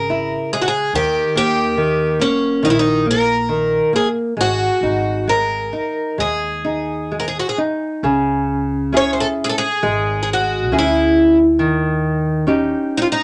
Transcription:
Already playing: G#1 C#3 A#4
0.10 E4
0.53 G#3 G#4
0.62 F#4
0.68 G#4
0.93 D#2 D#3 G4
1.36 D#2 A#3 G4
1.77 D#3
2.20 A#3 C#4
2.63 A#1 D#3 D#4
2.70 E4
2.79 D#4
3.06 A#3
3.11 A#4
3.49 D#3
3.93 A#3 G#4
4.37 G#1 G#3
4.41 F#4
4.81 G#1 D#4
5.28 G#3 A#4
5.73 D#4
6.18 D#2 G#3 G#4
6.65 D#4
7.12 G#3
7.20 A#4
7.28 G#4
7.39 F#4
7.49 G#4
7.58 D#4
8.03 C#2 C#3
8.93 C#4 E4 G#4
8.97 C#5
9.13 C5
9.20 A4
9.44 G#4
9.49 A4
9.58 G#4
9.83 G#1 G#3
10.23 G#4
10.33 F#4
10.71 D2 C#4 E4 G#4
10.79 E4
11.59 D#2 D#3
12.47 C#4 D#4 G4
12.97 D#4
13.02 F4
13.12 D#4

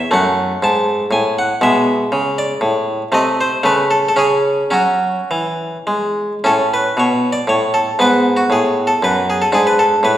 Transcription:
0.11 F#2 A3 F#5
0.63 G#2 A5
1.11 A2 G#5
1.39 F#5
1.61 B2 G#3 E5
2.12 C#3
2.38 D5
2.61 A2
3.12 C3 A3 D#5
3.41 C5
3.63 C#3 A3 B4
3.91 A4
4.09 A4
4.16 C#3 C#4 G#4
4.71 F#3 C#4 F#4
5.31 E3
5.87 G#3
6.44 A2 C#4 A4
6.74 B4
6.97 B2 C#5
7.33 D5
7.47 A2 C#5
7.74 A4
7.99 G#2 B3 B4
8.37 F#4
8.50 A2 G#4
8.87 A4
9.03 F#2 B4
9.30 G#4
9.42 A4
9.52 G#2 D4 G#4
9.67 B4
9.79 A4
10.03 A2 B4

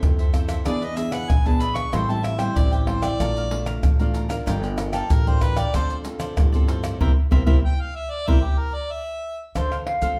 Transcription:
Already playing: C4 E4 A4 C5 E5
0.03 F2 C3, pandeiro, maracas, surdo
0.19 A4 C5 E5, pandeiro, maracas
0.33 C4 E4 F4 A4 C5 E5, pandeiro, tamborim, maracas, surdo
0.48 A4 C5 E5, pandeiro, tamborim, maracas
0.65 E2 E3 B3 D4 G#4 B4 D5 E5, pandeiro, tamborim, maracas, surdo
0.81 G#4 B4 D#5 E5, pandeiro, maracas
0.96 B3 D4 G#4 E5, muted cavaquinho stroke, pandeiro, maracas
1.11 G#4 B4 E5 F#5, pandeiro, tamborim, maracas
1.30 A#1 G#5, pandeiro, tamborim, maracas, surdo
1.45 B3 D4 G#4 B4 E5 A5, pandeiro, maracas
1.60 D4 G#4 B4 E5 B5, pandeiro, maracas
1.75 G#4 B4 E5 C#6, pandeiro, tamborim, maracas
1.92 A1 A2 G3 C4 E4 A4 C5 E5 G5 C6, pandeiro, tamborim, maracas, surdo
2.08 G3 C4 E4 C5 E5 G5 A5, pandeiro, maracas
2.24 E5, muted cavaquinho stroke, pandeiro, tamborim, maracas
2.38 G3 C4 E4 C5 E5 G5, pandeiro, tamborim, maracas
2.55 A1 E3 D5, pandeiro, maracas, surdo
2.72 G4 C5 E5 G5, pandeiro, maracas
2.87 G3 C4 E4 A4 C5 E5 G5, pandeiro, tamborim
3.02 C5 D5 E5 G5, pandeiro, tamborim, maracas
3.19 A#1 A#2 A3 D4 F4 A4 D5 F5 A#5, pandeiro, tamborim, maracas, surdo
3.37 D5 F5 A#5, pandeiro, maracas
3.51 A3 D4 F4, muted cavaquinho stroke, pandeiro
3.66 D5 F5 A#5, pandeiro, tamborim, maracas
3.83 A1 F3, pandeiro, tamborim, maracas, surdo
3.99 A3 D4 F4 D5 F5 A#5, pandeiro, maracas
4.14 A4 D5 F5 A#5, pandeiro, maracas
4.29 D4 F4 A#4 D5 F5 A#5, pandeiro, tamborim, maracas
4.46 G1 G3 F4 A#4 D5 G5, pandeiro, tamborim, maracas, surdo
4.63 A#4 D5 G5, pandeiro, maracas
4.77 D4 F4 A#4, muted cavaquinho stroke, pandeiro, tamborim, maracas
4.93 A4 A#4 D5 G5, pandeiro, tamborim, maracas
5.10 A1 D3 A#4, pandeiro, maracas, surdo
5.27 D4 F4 A#4 C5 D5 G5, pandeiro, maracas
5.41 F4 A#4 B4 D5 G5, pandeiro, tamborim, maracas, surdo
5.57 A#4 D5 G5, pandeiro, tamborim, maracas
5.74 D2 D3 C4 F4 A4 C5 D5, pandeiro, tamborim, maracas, surdo
5.90 A4 C5 D5, pandeiro, maracas
6.05 C4 F4 A4, muted cavaquinho stroke, pandeiro, maracas
6.20 A4 C5 D5, pandeiro, tamborim, maracas
6.37 G2 A2, pandeiro, tamborim, maracas, surdo
6.52 C4 F4 A4 C5 D5, pandeiro, maracas
6.68 F4 A4 C5 D5, pandeiro, maracas
6.83 A4 C5 D5, pandeiro, tamborim, maracas
7.00 C2 A#3 C4 E4 A#4 C5 E5, surdo
7.31 C2 A#3 C4 E4 A#4 C5 E5, surdo
7.46 C2 A#3 C4 E4 A#4 C5 E5, surdo
7.65 G5
7.81 F5
7.95 E5
8.11 D5
8.27 C2 A#3 C4 E4 A#4 C5 E5, surdo
8.45 G4
8.59 A#4
8.74 D5
8.92 E5
9.55 D2 D3 D4 A4 C5 F5, pandeiro, tamborim, maracas, surdo
9.71 A4 C5 F5, pandeiro, tamborim, maracas
9.87 F5, muted cavaquinho stroke, pandeiro, tamborim
10.02 D2 C4 F4 A4 C5 F5, pandeiro, maracas, surdo

